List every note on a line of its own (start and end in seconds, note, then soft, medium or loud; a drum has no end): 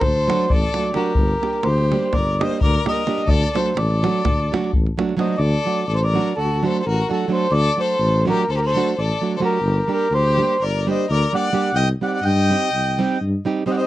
0.00 0.31 D2 medium
0.00 0.46 A4 medium
0.00 0.51 C5 loud
0.00 davul high medium
0.00 davul low medium
0.15 davul high soft
0.28 0.46 F#3 medium
0.28 0.46 A3 medium
0.28 0.47 D4 medium
0.28 0.47 F#4 medium
0.28 davul high medium
0.40 davul high soft
0.50 0.66 A1 medium
0.50 0.93 A4 medium
0.50 0.96 D5 loud
0.50 davul low medium
0.61 davul high soft
0.74 0.91 F#3 medium
0.74 0.91 A3 medium
0.74 0.92 D4 soft
0.74 0.92 F#4 medium
0.74 davul high medium
0.84 davul high soft
0.94 1.12 F#3 medium
0.94 1.12 A3 medium
0.94 1.12 D4 medium
0.94 1.13 F#4 medium
0.94 1.60 G4 medium
0.94 1.67 A#4 medium
0.94 davul high medium
1.05 davul high soft
1.15 1.33 G1 medium
1.15 davul low medium
1.28 davul high soft
1.41 1.60 G3 soft
1.41 1.60 A#3 soft
1.41 1.61 D4 soft
1.41 1.61 G4 soft
1.41 davul high medium
1.53 davul high soft
1.63 1.94 D2 medium
1.63 2.10 G4 medium
1.63 2.14 C5 medium
1.63 davul high medium
1.78 davul high soft
1.91 2.09 G3 medium
1.91 2.10 A#3 medium
1.91 2.10 D4 medium
1.91 2.10 G4 medium
1.91 davul high medium
2.02 davul high soft
2.13 2.43 G1 medium
2.13 2.39 A#4 medium
2.13 2.42 D5 loud
2.13 davul high medium
2.13 davul low medium
2.27 davul high soft
2.40 2.58 G3 medium
2.40 2.59 A#3 medium
2.40 2.59 D4 medium
2.40 2.59 G4 medium
2.40 2.61 C5 medium
2.40 2.60 D#5 medium
2.40 davul high medium
2.51 davul high soft
2.61 2.78 D2 medium
2.61 2.85 A#4 medium
2.61 2.88 D5 medium
2.61 davul low medium
2.74 davul high soft
2.85 3.03 G3 medium
2.85 3.03 A#3 soft
2.85 3.03 D4 soft
2.85 3.04 G4 medium
2.85 3.25 A#4 medium
2.85 3.29 D#5 medium
2.85 davul high medium
2.96 davul high soft
3.07 3.23 G3 medium
3.07 3.24 A#3 medium
3.07 3.24 D4 medium
3.07 3.25 G4 medium
3.07 davul high medium
3.18 davul high soft
3.27 3.44 D2 loud
3.27 3.53 A4 loud
3.27 3.56 D5 loud
3.27 davul low medium
3.43 davul high soft
3.54 3.72 F#3 soft
3.54 3.72 A3 soft
3.54 3.73 D4 soft
3.54 3.73 F#4 soft
3.54 3.74 A4 medium
3.54 3.77 C5 medium
3.54 davul high medium
3.66 davul high soft
3.76 4.06 A1 medium
3.76 4.70 A4 medium
3.76 4.71 D5 medium
3.76 davul high medium
3.90 davul high soft
4.03 4.21 F#3 medium
4.03 4.21 A3 medium
4.03 4.21 D4 soft
4.03 4.22 F#4 medium
4.03 davul high medium
4.25 4.54 D2 medium
4.25 davul high medium
4.25 davul low medium
4.40 davul high soft
4.52 4.70 F#3 medium
4.52 4.70 A3 medium
4.52 4.71 D4 medium
4.52 4.71 F#4 medium
4.52 davul high medium
4.64 davul high soft
4.73 4.89 A1 medium
4.73 davul low medium
4.86 davul high soft
4.98 5.15 F#3 medium
4.98 5.15 A3 soft
4.98 5.16 D4 medium
4.98 5.16 F#4 medium
4.98 davul high medium
5.09 davul high soft
5.17 5.34 F#3 medium
5.17 5.35 A3 medium
5.17 5.35 D4 medium
5.17 5.35 F#4 medium
5.17 5.37 C5 medium
5.17 5.40 D#5 medium
5.17 davul high medium
5.29 davul high soft
5.37 5.55 D2 loud
5.37 5.84 A4 medium
5.37 5.86 D5 loud
5.65 5.83 F#3 soft
5.65 5.83 A3 soft
5.65 5.84 D4 soft
5.65 5.84 F#4 soft
5.87 6.17 A1 medium
5.87 5.95 A4 medium
5.87 5.96 D5 medium
5.95 6.04 A4 medium
5.95 6.04 C5 medium
6.04 6.35 A#4 medium
6.04 6.37 D5 loud
6.14 6.32 F#3 medium
6.14 6.32 A3 medium
6.14 6.33 D4 medium
6.14 6.33 F#4 medium
6.36 6.66 D2 medium
6.36 6.64 F#4 medium
6.36 6.65 A4 medium
6.62 6.81 F#3 medium
6.62 6.81 A3 medium
6.62 6.81 D4 medium
6.62 6.82 F#4 medium
6.62 6.78 C5 medium
6.67 6.80 A4 medium
6.79 6.86 A4 medium
6.79 6.85 C5 medium
6.86 7.01 A1 medium
6.86 7.10 F#4 medium
6.86 7.09 A#4 medium
7.09 7.26 F#3 medium
7.09 7.26 A3 soft
7.09 7.26 D4 medium
7.09 7.27 F#4 medium
7.09 7.31 A4 medium
7.13 7.30 F#4 medium
7.28 7.46 F#3 medium
7.28 7.46 A3 medium
7.28 7.46 D4 medium
7.28 7.47 F#4 medium
7.33 7.51 A4 medium
7.33 7.52 C5 medium
7.51 7.67 D2 loud
7.51 7.78 A4 loud
7.51 7.80 D5 loud
7.76 7.94 F#3 soft
7.76 7.95 A3 soft
7.76 7.95 D4 soft
7.76 7.95 F#4 medium
7.80 8.25 A4 medium
7.80 8.25 C5 loud
7.99 8.28 A1 loud
8.25 8.44 F#3 medium
8.25 8.44 A3 medium
8.25 8.44 D4 medium
8.25 8.45 F#4 medium
8.25 8.47 G4 medium
8.30 8.50 A#4 medium
8.48 8.77 D2 medium
8.48 8.56 A4 medium
8.48 8.58 C5 medium
8.57 8.64 G4 soft
8.57 8.65 A#4 medium
8.65 8.95 A4 medium
8.65 8.99 C5 loud
8.75 8.93 F#3 medium
8.75 8.93 A3 medium
8.75 8.94 D4 medium
8.75 8.94 F#4 medium
8.97 9.12 A1 medium
8.97 9.34 A4 medium
8.97 9.38 D5 medium
9.21 9.38 F#3 medium
9.21 9.38 A3 medium
9.21 9.39 D4 medium
9.21 9.39 F#4 medium
9.36 9.58 F#3 medium
9.36 9.42 A4 medium
9.36 9.43 C5 medium
9.41 9.58 A3 medium
9.41 9.58 D4 medium
9.41 9.59 F#4 medium
9.41 9.87 G4 medium
9.45 9.91 A#4 medium
9.62 9.79 G1 loud
9.88 10.06 G3 medium
9.88 10.06 A#3 medium
9.88 10.07 D4 medium
9.88 10.07 G4 medium
9.92 10.11 G4 medium
9.92 10.13 A#4 loud
10.10 10.40 D2 medium
10.10 10.58 G4 medium
10.14 10.63 C5 loud
10.37 10.56 G3 medium
10.37 10.56 A#3 medium
10.37 10.56 D4 medium
10.37 10.56 G4 medium
10.61 10.90 G1 medium
10.61 10.87 A#4 medium
10.61 10.87 D5 loud
10.87 11.05 G3 medium
10.87 11.05 A#3 medium
10.87 11.05 D4 medium
10.87 11.06 G4 medium
10.87 11.09 C5 medium
10.87 11.11 D#5 medium
11.09 11.24 D2 medium
11.09 11.33 A#4 medium
11.09 11.36 D5 medium
11.33 11.50 G3 medium
11.33 11.50 A#3 medium
11.33 11.51 D4 medium
11.33 11.51 G4 medium
11.33 11.72 D5 medium
11.33 11.76 F#5 loud
11.53 11.70 G3 medium
11.53 11.70 A#3 medium
11.53 11.70 D4 medium
11.53 11.71 G4 medium
11.74 11.91 C2 loud
11.74 11.88 D#5 loud
11.74 11.88 G5 loud
12.01 12.19 G3 soft
12.01 12.19 C4 soft
12.01 12.20 D#4 soft
12.01 12.20 G4 soft
12.01 12.07 D5 medium
12.01 12.07 F#5 loud
12.07 12.12 D5 medium
12.07 12.13 F#5 medium
12.14 12.23 D5 medium
12.14 12.25 F#5 medium
12.23 12.52 G2 medium
12.23 13.18 D#5 loud
12.23 13.18 G5 loud
12.49 12.68 G3 medium
12.49 12.68 C4 medium
12.49 12.68 D#4 medium
12.49 12.69 G4 medium
12.72 13.02 C2 medium
12.99 13.17 G3 medium
12.99 13.17 C4 medium
12.99 13.17 D#4 medium
12.99 13.18 G4 medium
13.21 13.36 G2 medium
13.45 13.62 G3 medium
13.45 13.62 C4 medium
13.45 13.63 D#4 medium
13.45 13.63 G4 medium
13.66 13.83 G3 medium
13.66 13.83 C4 medium
13.66 13.84 D#4 medium
13.66 13.84 G4 medium
13.66 13.71 C5 medium
13.66 13.72 D#5 medium
13.71 13.76 D5 medium
13.71 13.77 F#5 medium
13.77 13.80 C5 medium
13.77 13.85 C5 medium
13.77 13.80 D#5 medium
13.82 13.87 D#5 medium